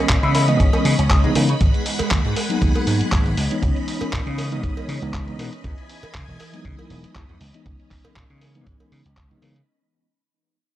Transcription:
Already playing: E3 G#3 B3 C#4 D#5 B5
0.09 A#2 C#4, kick, clap, closed hi-hat
0.23 C#3 E4, closed hi-hat
0.35 E4, open hi-hat, cowbell
0.48 E3 G#3 B3 C#4 D#5, closed hi-hat
0.60 G#2 C#4, kick, closed hi-hat
0.73 C#4, closed hi-hat, cowbell
0.85 C#3 C#4, open hi-hat
0.99 C#2 C#4, closed hi-hat
1.10 G#4, kick, clap, closed hi-hat
1.24 C#3 E3 G#3 B3 D#4, closed hi-hat
1.35 C#3 E3 G#3 B3 C#4 D#4, open hi-hat, cowbell
1.49 C#3, closed hi-hat
1.61 G#1 G#3 G#4 F#5, kick, closed hi-hat
1.74 closed hi-hat
1.86 open hi-hat
1.99 muted slap bass stroke, closed hi-hat, cowbell
2.11 D#2, kick, clap, closed hi-hat
2.25 G#2, closed hi-hat
2.36 open hi-hat, cowbell
2.49 F#3 A#3 B3 D#4, closed hi-hat
2.62 D#2, kick, closed hi-hat
2.75 closed hi-hat, cowbell
2.87 G#2, open hi-hat
3.01 muted slap bass stroke, closed hi-hat
3.12 G#1, kick, clap, closed hi-hat
3.26 G#1, closed hi-hat
3.37 C#2 C#4 D#5, open hi-hat
3.50 E3 G#3 B3 D#4, closed hi-hat
3.62 C#2, kick, closed hi-hat
3.76 closed hi-hat
3.88 open hi-hat
4.01 muted slap bass stroke, closed hi-hat, cowbell
4.13 A#2, kick, clap, closed hi-hat
4.27 C#3, closed hi-hat
4.38 open hi-hat, cowbell
4.51 E3 G#3 B3 D#4, closed hi-hat
4.63 G#2, kick, closed hi-hat
4.77 closed hi-hat, cowbell
4.88 C#3, open hi-hat
5.02 C#2 E3 G#3 B3 D#4, closed hi-hat
5.14 kick, clap, closed hi-hat
5.27 E3 G#3 B3 D#4, closed hi-hat
5.39 B2 E3 G#3 B3 D#4, open hi-hat, cowbell
5.53 closed hi-hat
5.64 E2 E3 G#5, kick, closed hi-hat
5.78 closed hi-hat
5.89 open hi-hat
6.03 muted slap bass stroke, closed hi-hat, cowbell
6.14 C#3, kick, clap, closed hi-hat
6.28 E1, closed hi-hat
6.40 open hi-hat, cowbell
6.53 F#3 G#3 B3 D#4, closed hi-hat
6.65 C#3, kick, closed hi-hat
6.79 closed hi-hat, cowbell
6.90 E1, open hi-hat
7.04 muted slap bass stroke, closed hi-hat
7.15 E2, kick, clap, closed hi-hat
7.29 E2, closed hi-hat
7.40 C#2 C#4, open hi-hat
7.53 E3 G#3 B3 D#4, closed hi-hat
7.66 C#2, kick, closed hi-hat
7.80 closed hi-hat
7.91 kick, clap, open hi-hat
8.05 muted slap bass stroke, closed hi-hat, cowbell
8.16 A#2, kick, clap, closed hi-hat
8.30 C#3, closed hi-hat
8.41 open hi-hat, cowbell
8.55 E3 G#3 B3 D#4, closed hi-hat
8.67 G#2, kick, closed hi-hat
8.80 closed hi-hat, cowbell
8.92 C#3, open hi-hat
9.05 C#2, closed hi-hat
9.17 kick, clap, closed hi-hat
9.31 C#3 E3 G#3 B3 D#4, closed hi-hat
9.42 C#3 E3 G#3 B3 D#4, open hi-hat, cowbell
9.56 closed hi-hat

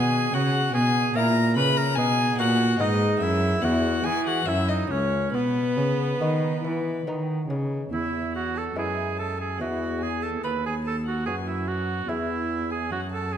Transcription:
Already playing: B2 B3 F#4 G#4 G#5
0.33 C#3 F#4 F#5
0.73 B2 G#4 G#5
1.15 A#2 A#3 E4 A#4 A#5
1.56 C#3 B4 B5
1.77 A#4 A#5
1.96 B2 B3 D#4 G#4 G#5
2.38 A#2 F#4 F#5
2.79 G#2 G#3 B3 D#4 D#5
3.20 F#2 E4 E5
3.61 E2 G#3 B3 E4 F#4 F#5
4.04 E3 G#4 G#5
4.26 F#4 F#5
4.46 F#2 A#3 E4 E5
4.68 D#4 D#5
4.90 C#2 C#4 C#5
5.33 B2 B3 B4
5.77 C#3
6.21 D#3 B3 D#4
6.64 E3
7.06 D#3 B3 D#4
7.49 C#3
7.92 E2 E4 E5
8.34 F#4 F#5
8.55 A4 A5
8.76 F#2 G#3 B3 E4 G#4 G#5
9.17 A4 A5
9.38 G#4 G#5
9.59 E2 G#3 B3 E4 F#4 F#5
10.00 G#4 G#5
10.22 A4 A5
10.43 D#2 B4 B5
10.65 G#4 G#5
10.85 A4 A5
11.06 F#4 F#5
11.26 F#2 B3 F#4 G#4 G#5
11.47 E4 E5
11.68 F#4 F#5
12.08 E2 B3 E4 G#4 E5
12.70 G#4 G#5
12.91 F#2 F#4 F#5
13.12 A4 A5
13.32 G#4 G#5

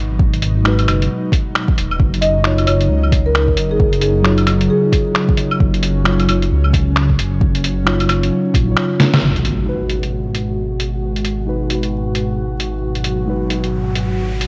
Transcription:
Already playing: G#1 B2 F#3 D#4
0.19 G#1, kick
0.34 closed hi-hat
0.42 closed hi-hat
0.64 G#3 D#4 F#4 B4, finger snap
0.79 closed hi-hat, claves
0.85 F#1 G#3 D#4, finger snap, closed hi-hat, claves
0.89 F#4 B4
1.02 closed hi-hat
1.32 kick, closed hi-hat
1.55 finger snap
1.68 kick
1.78 D#1, closed hi-hat
1.91 claves
1.99 F#1 C#3 D#4, kick
2.14 closed hi-hat
2.21 D#5, closed hi-hat
2.43 F#3 D#4 F4 C#5, finger snap
2.58 closed hi-hat, claves
2.65 F#1 F#3 D#4 F4 C#5, closed hi-hat, claves
2.69 C#5
2.81 closed hi-hat
2.89 C#2
3.03 claves
3.12 kick, closed hi-hat
3.26 A#4
3.35 finger snap
3.48 kick
3.57 F#1, closed hi-hat
3.71 G#4
3.80 F#1, kick
3.93 closed hi-hat
4.01 G#4, closed hi-hat
4.22 F#3 D#4 F4 C#5, finger snap
4.38 closed hi-hat, claves
4.43 F#3 D#4, finger snap, closed hi-hat, claves
4.48 F#1 F4 C#5
4.61 closed hi-hat
4.70 G#4
4.92 kick, closed hi-hat
5.15 finger snap
5.29 kick
5.37 closed hi-hat
5.51 claves
5.60 F#1 C#4, kick
5.74 closed hi-hat
5.83 closed hi-hat
6.04 F#3 D#4 F4 C#5, finger snap
6.20 closed hi-hat, claves
6.28 F#1 F#3 D#4 F4 C#5, closed hi-hat, claves
6.42 closed hi-hat
6.52 C#2
6.64 claves
6.73 kick, closed hi-hat
6.96 finger snap
7.10 kick
7.19 F#1, closed hi-hat
7.41 F#1, kick
7.55 closed hi-hat
7.64 closed hi-hat
7.84 F#3 D#4 F4 C#5, finger snap
8.00 closed hi-hat, claves
8.05 F#3 D#4, finger snap, closed hi-hat, claves
8.10 F#1 F4 C#5
8.23 closed hi-hat
8.54 A#1, kick, closed hi-hat
8.64 F#3 D#4
8.69 F4 C#5
8.77 finger snap
9.00 snare, closed hi-hat
9.14 snare, claves
9.22 G#1 B2 G#3 F#4, impact
9.36 closed hi-hat
9.45 closed hi-hat
9.64 G#3 D#4 F#4
9.69 B4
9.87 G#3 D#4 F#4, closed hi-hat
9.91 B4
10.03 closed hi-hat
10.35 closed hi-hat
10.80 closed hi-hat
11.16 closed hi-hat
11.25 closed hi-hat
11.45 G#3 D#4 F#4 B4
11.67 G#3 D#4, closed hi-hat
11.73 F#4 B4
11.83 closed hi-hat
12.15 closed hi-hat
12.60 closed hi-hat
12.82 F#3, riser
12.95 closed hi-hat
13.04 closed hi-hat
13.26 G#3 D#4 F#4 B4
13.49 G#3 D#4 F#4 B4, closed hi-hat
13.64 closed hi-hat
13.95 closed hi-hat
14.41 closed hi-hat

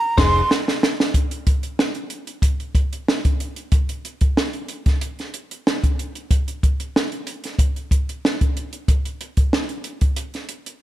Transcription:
Already playing: A#5
0.18 F1 D#4 G#4 C5 C6, kick, snare, crash
0.51 snare
0.68 snare
0.83 snare
1.00 snare
1.14 kick, closed hi-hat
1.31 closed hi-hat
1.47 kick, closed hi-hat
1.63 closed hi-hat
1.79 snare
1.95 closed hi-hat
2.10 closed hi-hat
2.27 closed hi-hat
2.42 kick, closed hi-hat
2.60 closed hi-hat
2.75 kick, closed hi-hat
2.93 closed hi-hat
3.08 snare
3.25 kick, closed hi-hat
3.40 closed hi-hat
3.56 closed hi-hat
3.72 kick, closed hi-hat
3.89 closed hi-hat
4.05 closed hi-hat
4.21 kick, closed hi-hat
4.37 snare
4.53 closed hi-hat
4.68 closed hi-hat
4.86 kick, snare, closed hi-hat
5.01 closed hi-hat
5.19 snare, closed hi-hat
5.34 closed hi-hat
5.51 closed hi-hat
5.67 snare
5.84 kick, closed hi-hat
5.99 closed hi-hat
6.15 closed hi-hat
6.31 kick, closed hi-hat
6.48 closed hi-hat
6.63 kick, closed hi-hat
6.80 closed hi-hat
6.96 snare
7.12 closed hi-hat
7.27 closed hi-hat
7.44 snare, closed hi-hat
7.59 kick, closed hi-hat
7.76 closed hi-hat
7.91 kick, closed hi-hat
8.09 closed hi-hat
8.25 snare
8.41 kick, closed hi-hat
8.57 closed hi-hat
8.73 closed hi-hat
8.88 kick, closed hi-hat
9.05 closed hi-hat
9.21 closed hi-hat
9.37 kick, closed hi-hat
9.53 snare
9.69 closed hi-hat
9.84 closed hi-hat
10.01 kick, closed hi-hat
10.16 closed hi-hat
10.34 snare, closed hi-hat
10.49 closed hi-hat
10.66 closed hi-hat

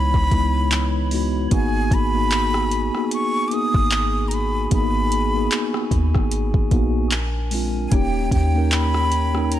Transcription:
Already playing: C#2 E3 G#3 B3 D#4 E4 C#5 B5
0.14 C#2, kick
0.31 C#2 G#3 B3 D#4 E4, kick, closed hi-hat
0.71 clap, closed hi-hat
1.11 G#3 B3 D#4 F#4, open hi-hat
1.51 G#1 A#3 B3 D#4 F#4 G#4 G#5, kick, closed hi-hat
1.91 G#1 B5, kick, closed hi-hat
2.14 A#3 B3 D#4 F#4
2.31 clap, closed hi-hat
2.54 cross-stick
2.71 closed hi-hat
2.94 A#3 B3 D#4 G#4, cross-stick
3.11 C#6, closed hi-hat
3.48 A#3 D6, closed hi-hat
3.52 B3 D#4 G#4 D#6
3.74 G#1, kick
3.91 clap, closed hi-hat
4.28 A#5, closed hi-hat
4.34 B5
4.71 G#1 A#3 B3 D#4 G#4 B5, kick, closed hi-hat
5.12 closed hi-hat
5.34 A#3 B3 D#4 G#4
5.52 clap, closed hi-hat
5.74 cross-stick
5.91 D#2, kick, closed hi-hat
6.15 G#1, kick, cross-stick
6.31 closed hi-hat
6.54 G#1, kick
6.71 A#1 A#3 B3 D#4 F#4, kick, closed hi-hat
7.11 D4 A#4, clap, closed hi-hat
7.51 G#3 C4 D4 F4, open hi-hat
7.88 A#3 D#4 C#5 G5 G#5, kick, closed hi-hat
7.92 D#1 C#4 D#4 G4 G5
8.31 D#2 G5, kick, closed hi-hat
8.54 A#3 C#4 D#4 A#4
8.72 B5, clap, closed hi-hat
8.94 cross-stick
9.12 closed hi-hat
9.34 A#3 C#4 D#4 A#4, cross-stick
9.52 A#5, closed hi-hat

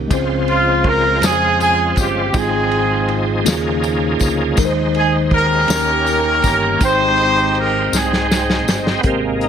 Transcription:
Already playing: D#3 A#3 C#4 D#4 G4 A#4
0.08 C#2 C#3 F3 G#3 C4 C#4 G4 C5, kick, ride, tambourine
0.12 F4 C5
0.17 F4
0.48 F4, ride
0.84 A#4, kick, ride
1.21 F2 G#4, snare, ride, tambourine
1.60 G#4, ride, tambourine
1.96 G1 G4, kick, ride, tambourine
2.33 G#1 G#2 F3 G#3 C4 D#4 F4 G4 G#4, kick, ride, tambourine
2.37 G#4
2.71 ride
3.09 ride
3.44 D#2 C#3 F3 A#3 C#4 D#4 F4 G#4, ride, tambourine
3.48 snare
3.84 ride, tambourine
4.19 D2, kick, ride, tambourine
4.56 D#2 D#3 G#3 D#4 A#4 C5, kick, ride, tambourine
4.65 C5
4.94 G#4, ride
5.31 C#4 G4 A#4, kick, ride
5.68 D#2 D#3 A#3 C#4 D#4 G4 A#4 C#5, snare, ride, tambourine
6.06 ride, tambourine
6.42 G1, kick, ride, tambourine
6.79 G#1 G#2 G#3 C4 D#4 C5 G5, kick, ride, tambourine
6.83 D#4 G4 C5 G5
7.18 ride
7.55 A#4, ride
7.92 C2 C4 D#4 G#4, snare, tambourine
8.13 snare
8.31 snare, tambourine
8.50 snare
8.67 G1, snare, tambourine
8.87 snare
8.99 B3
9.03 G#1 G#2 C3 G#3 C4 G4 G#4 A#4, kick, closed hi-hat
9.07 A#3
9.41 D#4, closed hi-hat

